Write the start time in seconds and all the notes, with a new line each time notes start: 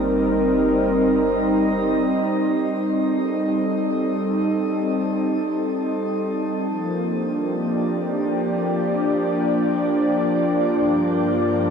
Already playing: G1 G3 C4 D#4 A#4
0.05 D#5
2.92 A4
6.66 F3
6.74 A#3
7.15 D4
7.30 G4
7.57 D5
10.72 G2